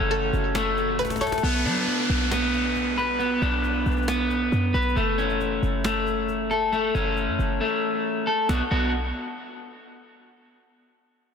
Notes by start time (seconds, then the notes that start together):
Already playing: C#3 A3 C#4 F#4 A4
0.00 F#1
0.11 A4, cajon slap
0.33 F#1, cajon slap
0.55 A3, cajon slap
0.77 cajon slap
0.99 B4, cajon slap
1.05 cajon slap
1.10 cajon slap
1.16 cajon slap
1.21 A4 C#5, cajon slap
1.27 cajon slap
1.32 cajon slap
1.38 cajon slap
1.43 B1 B3, downlifter
1.65 F#3 D4, cajon slap
1.76 cajon slap
1.87 cajon slap
2.09 B1, cajon slap
2.31 B3, cajon slap
2.54 cajon slap
2.76 cajon slap
2.98 B4, cajon slap
3.19 B3, cajon slap
3.42 B1 D4, cajon slap
3.64 cajon slap
3.86 B1, cajon slap
3.92 cajon slap
3.97 cajon slap
4.03 cajon slap
4.08 B3, cajon slap
4.30 cajon slap
4.52 F#2, cajon slap
4.74 B1 B4, cajon slap
4.82 cajon slap
4.89 cajon slap
4.96 F#1 A3, cajon slap
5.18 C#4, cajon slap
5.29 cajon slap
5.40 cajon slap
5.62 F#1, cajon slap
5.84 A3, cajon slap
6.07 cajon slap
6.29 cajon slap
6.51 A4, cajon slap
6.72 A3, cajon slap
6.95 F#1 C#4, cajon slap
7.17 cajon slap
7.28 F#2
7.39 F#1, cajon slap
7.61 A3
8.27 A4
8.49 B1 B3 D4 F#4, cajon slap
8.71 B1 B3 D4 F#4